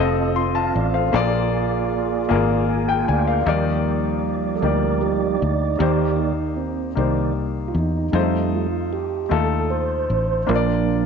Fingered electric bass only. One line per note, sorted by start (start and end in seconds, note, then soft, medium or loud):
0.00 0.71 F1 medium
0.75 1.11 A1 medium
1.14 2.32 A#1 loud
2.31 3.04 G#1 medium
3.09 3.44 D2 medium
3.46 4.60 D#2 loud
4.63 5.37 D2 medium
5.42 5.78 D2 medium
5.80 6.94 D#2 loud
6.97 7.71 C2 medium
7.75 8.11 E2 medium
8.13 9.27 F2 medium
9.31 10.06 D#2 medium
10.10 10.46 A1 medium
10.49 11.06 A#1 loud